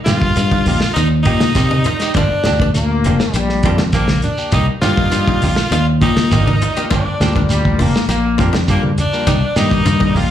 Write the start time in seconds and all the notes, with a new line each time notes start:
0.05 G2 A#3 F4 G4, muted clean electric guitar stroke, snare, closed hi-hat, high conga, shekere
0.21 muted clean electric guitar stroke, kick, shekere
0.36 G2 F4, closed hi-hat, shekere
0.51 D#4, kick
0.66 A#1 A#3 D#4 G4, open hi-hat, high conga, low conga, shekere
0.81 snare, shekere
0.94 D#2 D#4, muted clean electric guitar stroke, closed hi-hat, shekere
1.12 muted clean electric guitar stroke
1.23 A#2 A#3 D#4 G4, kick, closed hi-hat, low conga
1.40 snare, closed hi-hat, high conga, shekere
1.55 C3 A#3 D#4 F4 G4, kick, snare, closed hi-hat, shekere
1.70 D#4, muted clean electric guitar stroke, high conga
1.84 F4, muted clean electric guitar stroke, closed hi-hat, low conga, shekere
2.00 D#4 G4, snare, closed hi-hat, shekere
2.14 G1 F3 A#3 D4 F4, muted clean electric guitar stroke, kick, closed hi-hat, low conga, shekere
2.31 muted clean electric guitar stroke
2.44 D2 A#3 D4 G4, muted clean electric guitar stroke, snare, closed hi-hat, high conga, shekere
2.60 D4, kick, shekere
2.74 D2 A#3, closed hi-hat, shekere
2.91 muted clean electric guitar stroke
3.04 F1 F3 A#3 D4 F4 G4, closed hi-hat, high conga, low conga, shekere
3.20 snare, shekere
3.33 A#1 G3 G4, muted clean electric guitar stroke, closed hi-hat, shekere
3.49 muted clean electric guitar stroke, snare
3.63 F2 F3 A#3 D4 F4 G4, kick, snare, closed hi-hat
3.78 G4, snare, high conga, shekere
3.92 A#1 F3 A#3 D4 G4, kick, closed hi-hat, shekere
4.08 snare, high conga
4.22 D4, muted clean electric guitar stroke, closed hi-hat, low conga, shekere
4.38 A#3 D4 G4, shekere
4.52 C2 A#3 D#4 G4, kick, closed hi-hat, low conga, shekere
4.69 muted clean electric guitar stroke
4.82 G2 A#3 D4 D#4 F4 G4, snare, closed hi-hat, high conga, shekere
4.97 muted clean electric guitar stroke, kick, shekere
5.12 G2 F4, closed hi-hat, shekere
5.27 D#4, muted clean electric guitar stroke, kick
5.42 A#1 A#3 D#4 G4, open hi-hat, high conga, low conga, shekere
5.56 snare, shekere
5.71 D#2 D#4 F4, muted clean electric guitar stroke, closed hi-hat, shekere
5.88 muted clean electric guitar stroke
6.00 A#2 A#3 D4 D#4 G4, kick, closed hi-hat
6.16 snare, closed hi-hat, high conga, shekere
6.31 G#1 A#3 D4 D#4 F4 G4, kick, closed hi-hat, shekere
6.47 D#4, muted clean electric guitar stroke, high conga
6.61 F4, muted clean electric guitar stroke, closed hi-hat, low conga, shekere
6.76 A#3 D4 D#4 F4 G4, closed hi-hat, shekere
6.90 G1 F3 A#3 D4 F4 G4, kick, closed hi-hat, shekere
7.07 muted clean electric guitar stroke
7.20 D2 F3 G3 A#3 D4 G4, snare, closed hi-hat, high conga, shekere
7.36 D4, muted clean electric guitar stroke, kick, shekere
7.49 D2 G3, closed hi-hat, shekere
7.65 muted clean electric guitar stroke, kick
7.79 F1 F3 A#3 D4 F4 G4, open hi-hat, high conga, low conga, shekere
7.95 snare, shekere
8.08 A#1 A#3 G4, muted clean electric guitar stroke, closed hi-hat, shekere
8.25 muted clean electric guitar stroke
8.38 F2 F3 G3 A#3 D4 F4 G4, kick, snare, closed hi-hat
8.53 G4, snare, high conga, shekere
8.68 G2 F3 G3 A#3 D4 G4, kick, closed hi-hat, shekere
8.73 A#3
8.83 muted clean electric guitar stroke, high conga
8.98 D4, muted clean electric guitar stroke, closed hi-hat, high conga, low conga, shekere
9.13 F3 G3 A#3 D4 G4, shekere
9.27 C2 A#3 D#4 G4, kick, closed hi-hat, low conga, shekere
9.42 muted clean electric guitar stroke
9.56 G2 D#3 G3 A#3 D#4 G4 D5, snare, closed hi-hat, high conga, shekere
9.71 muted clean electric guitar stroke, kick, shekere
9.85 G2 F4, closed hi-hat, high conga, shekere
10.00 D#4, muted clean electric guitar stroke, kick
10.15 A#1 A#3 D#4 F4 G4, open hi-hat, high conga, low conga, shekere